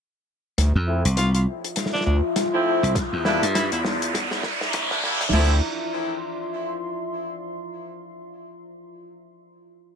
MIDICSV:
0, 0, Header, 1, 8, 480
1, 0, Start_track
1, 0, Key_signature, -1, "minor"
1, 0, Tempo, 594059
1, 469, Time_signature, 4, 2, 24, 8
1, 8043, End_track
2, 0, Start_track
2, 0, Title_t, "Ambient pad"
2, 0, Program_c, 0, 92
2, 467, Note_on_c, 0, 65, 82
2, 762, Note_on_c, 0, 76, 88
2, 1349, Note_on_c, 0, 84, 73
2, 2388, Note_off_c, 0, 65, 0
2, 2389, Note_on_c, 0, 64, 90
2, 2882, Note_on_c, 0, 74, 90
2, 3078, Note_on_c, 0, 82, 80
2, 3164, Note_off_c, 0, 76, 0
2, 3165, Note_off_c, 0, 84, 0
2, 4307, Note_off_c, 0, 82, 0
2, 4309, Note_off_c, 0, 64, 0
2, 4309, Note_off_c, 0, 74, 0
2, 4311, Note_on_c, 0, 65, 75
2, 4395, Note_on_c, 0, 76, 72
2, 4469, Note_on_c, 0, 84, 79
2, 6196, Note_off_c, 0, 84, 0
2, 6197, Note_off_c, 0, 65, 0
2, 6197, Note_off_c, 0, 76, 0
2, 8043, End_track
3, 0, Start_track
3, 0, Title_t, "Tenor saxophone"
3, 0, Program_c, 1, 66
3, 945, Note_on_c, 1, 65, 88
3, 1037, Note_off_c, 1, 65, 0
3, 1086, Note_on_c, 1, 65, 75
3, 1151, Note_off_c, 1, 65, 0
3, 1565, Note_on_c, 1, 62, 94
3, 1631, Note_off_c, 1, 62, 0
3, 1663, Note_on_c, 1, 62, 77
3, 1756, Note_off_c, 1, 62, 0
3, 2867, Note_on_c, 1, 64, 90
3, 2958, Note_off_c, 1, 64, 0
3, 3009, Note_on_c, 1, 64, 77
3, 3073, Note_off_c, 1, 64, 0
3, 8043, End_track
4, 0, Start_track
4, 0, Title_t, "Horn section"
4, 0, Program_c, 2, 61
4, 708, Note_on_c, 2, 53, 75
4, 708, Note_on_c, 2, 57, 69
4, 708, Note_on_c, 2, 60, 69
4, 708, Note_on_c, 2, 64, 83
4, 865, Note_off_c, 2, 53, 0
4, 865, Note_off_c, 2, 57, 0
4, 865, Note_off_c, 2, 60, 0
4, 865, Note_off_c, 2, 64, 0
4, 2048, Note_on_c, 2, 57, 72
4, 2049, Note_on_c, 2, 53, 80
4, 2049, Note_on_c, 2, 60, 74
4, 2049, Note_on_c, 2, 64, 89
4, 2376, Note_off_c, 2, 53, 0
4, 2376, Note_off_c, 2, 57, 0
4, 2376, Note_off_c, 2, 60, 0
4, 2376, Note_off_c, 2, 64, 0
4, 2629, Note_on_c, 2, 55, 103
4, 2629, Note_on_c, 2, 58, 88
4, 2629, Note_on_c, 2, 62, 91
4, 2629, Note_on_c, 2, 64, 106
4, 2785, Note_off_c, 2, 55, 0
4, 2785, Note_off_c, 2, 58, 0
4, 2785, Note_off_c, 2, 62, 0
4, 2785, Note_off_c, 2, 64, 0
4, 3968, Note_on_c, 2, 55, 80
4, 3968, Note_on_c, 2, 58, 78
4, 3968, Note_on_c, 2, 62, 79
4, 3968, Note_on_c, 2, 64, 94
4, 4040, Note_off_c, 2, 55, 0
4, 4040, Note_off_c, 2, 58, 0
4, 4040, Note_off_c, 2, 62, 0
4, 4040, Note_off_c, 2, 64, 0
4, 4067, Note_on_c, 2, 55, 82
4, 4067, Note_on_c, 2, 58, 74
4, 4067, Note_on_c, 2, 62, 72
4, 4067, Note_on_c, 2, 64, 86
4, 4224, Note_off_c, 2, 55, 0
4, 4224, Note_off_c, 2, 58, 0
4, 4224, Note_off_c, 2, 62, 0
4, 4224, Note_off_c, 2, 64, 0
4, 4308, Note_on_c, 2, 53, 92
4, 4308, Note_on_c, 2, 57, 83
4, 4308, Note_on_c, 2, 60, 79
4, 4308, Note_on_c, 2, 64, 102
4, 4494, Note_off_c, 2, 53, 0
4, 4494, Note_off_c, 2, 57, 0
4, 4495, Note_off_c, 2, 60, 0
4, 4495, Note_off_c, 2, 64, 0
4, 8043, End_track
5, 0, Start_track
5, 0, Title_t, "Analog synth bass"
5, 0, Program_c, 3, 38
5, 468, Note_on_c, 3, 38, 100
5, 587, Note_off_c, 3, 38, 0
5, 1669, Note_on_c, 3, 38, 100
5, 1787, Note_off_c, 3, 38, 0
5, 3009, Note_on_c, 3, 40, 89
5, 3332, Note_off_c, 3, 40, 0
5, 3349, Note_on_c, 3, 40, 99
5, 3573, Note_off_c, 3, 40, 0
5, 4209, Note_on_c, 3, 36, 100
5, 4293, Note_off_c, 3, 36, 0
5, 4309, Note_on_c, 3, 38, 107
5, 4532, Note_off_c, 3, 38, 0
5, 8043, End_track
6, 0, Start_track
6, 0, Title_t, "Slap bass"
6, 0, Program_c, 4, 36
6, 610, Note_on_c, 4, 41, 92
6, 827, Note_off_c, 4, 41, 0
6, 850, Note_on_c, 4, 36, 95
6, 1173, Note_off_c, 4, 36, 0
6, 2288, Note_on_c, 4, 36, 93
6, 2372, Note_off_c, 4, 36, 0
6, 2527, Note_on_c, 4, 40, 100
6, 2746, Note_off_c, 4, 40, 0
6, 2767, Note_on_c, 4, 43, 95
6, 2986, Note_off_c, 4, 43, 0
6, 3828, Note_on_c, 4, 34, 89
6, 4187, Note_off_c, 4, 34, 0
6, 8043, End_track
7, 0, Start_track
7, 0, Title_t, "Riser"
7, 0, Program_c, 5, 103
7, 468, Note_on_c, 5, 60, 82
7, 4308, Note_off_c, 5, 60, 0
7, 8043, End_track
8, 0, Start_track
8, 0, Title_t, "Drums"
8, 470, Note_on_c, 9, 38, 42
8, 470, Note_on_c, 9, 42, 93
8, 551, Note_off_c, 9, 38, 0
8, 551, Note_off_c, 9, 42, 0
8, 850, Note_on_c, 9, 42, 69
8, 931, Note_off_c, 9, 42, 0
8, 946, Note_on_c, 9, 42, 83
8, 947, Note_on_c, 9, 38, 53
8, 1026, Note_off_c, 9, 42, 0
8, 1028, Note_off_c, 9, 38, 0
8, 1087, Note_on_c, 9, 42, 51
8, 1168, Note_off_c, 9, 42, 0
8, 1329, Note_on_c, 9, 42, 55
8, 1410, Note_off_c, 9, 42, 0
8, 1421, Note_on_c, 9, 42, 88
8, 1430, Note_on_c, 9, 38, 51
8, 1502, Note_off_c, 9, 38, 0
8, 1502, Note_off_c, 9, 42, 0
8, 1502, Note_on_c, 9, 38, 42
8, 1574, Note_off_c, 9, 38, 0
8, 1574, Note_on_c, 9, 38, 33
8, 1623, Note_off_c, 9, 38, 0
8, 1623, Note_on_c, 9, 38, 26
8, 1704, Note_off_c, 9, 38, 0
8, 1907, Note_on_c, 9, 42, 84
8, 1908, Note_on_c, 9, 38, 67
8, 1988, Note_off_c, 9, 42, 0
8, 1989, Note_off_c, 9, 38, 0
8, 2296, Note_on_c, 9, 42, 74
8, 2376, Note_off_c, 9, 42, 0
8, 2386, Note_on_c, 9, 38, 74
8, 2388, Note_on_c, 9, 36, 116
8, 2389, Note_on_c, 9, 42, 90
8, 2466, Note_off_c, 9, 38, 0
8, 2469, Note_off_c, 9, 36, 0
8, 2470, Note_off_c, 9, 42, 0
8, 2627, Note_on_c, 9, 38, 81
8, 2708, Note_off_c, 9, 38, 0
8, 2772, Note_on_c, 9, 42, 65
8, 2853, Note_off_c, 9, 42, 0
8, 2871, Note_on_c, 9, 38, 91
8, 2871, Note_on_c, 9, 42, 92
8, 2951, Note_off_c, 9, 38, 0
8, 2951, Note_off_c, 9, 42, 0
8, 3006, Note_on_c, 9, 42, 52
8, 3086, Note_off_c, 9, 42, 0
8, 3108, Note_on_c, 9, 38, 92
8, 3189, Note_off_c, 9, 38, 0
8, 3249, Note_on_c, 9, 42, 53
8, 3330, Note_off_c, 9, 42, 0
8, 3348, Note_on_c, 9, 36, 68
8, 3351, Note_on_c, 9, 38, 84
8, 3352, Note_on_c, 9, 42, 92
8, 3429, Note_off_c, 9, 36, 0
8, 3431, Note_off_c, 9, 38, 0
8, 3433, Note_off_c, 9, 42, 0
8, 3484, Note_on_c, 9, 38, 79
8, 3565, Note_off_c, 9, 38, 0
8, 3583, Note_on_c, 9, 38, 92
8, 3588, Note_on_c, 9, 36, 106
8, 3663, Note_off_c, 9, 38, 0
8, 3669, Note_off_c, 9, 36, 0
8, 3727, Note_on_c, 9, 38, 88
8, 3808, Note_off_c, 9, 38, 0
8, 3824, Note_on_c, 9, 42, 87
8, 3829, Note_on_c, 9, 38, 107
8, 3904, Note_off_c, 9, 42, 0
8, 3910, Note_off_c, 9, 38, 0
8, 3968, Note_on_c, 9, 38, 91
8, 3969, Note_on_c, 9, 36, 115
8, 4049, Note_off_c, 9, 38, 0
8, 4050, Note_off_c, 9, 36, 0
8, 4069, Note_on_c, 9, 38, 109
8, 4150, Note_off_c, 9, 38, 0
8, 4209, Note_on_c, 9, 38, 90
8, 4210, Note_on_c, 9, 42, 74
8, 4228, Note_off_c, 9, 38, 0
8, 4228, Note_on_c, 9, 38, 76
8, 4274, Note_off_c, 9, 38, 0
8, 4274, Note_on_c, 9, 38, 59
8, 4291, Note_off_c, 9, 42, 0
8, 4309, Note_off_c, 9, 38, 0
8, 4309, Note_on_c, 9, 38, 105
8, 4309, Note_on_c, 9, 49, 91
8, 4390, Note_off_c, 9, 38, 0
8, 4390, Note_off_c, 9, 49, 0
8, 8043, End_track
0, 0, End_of_file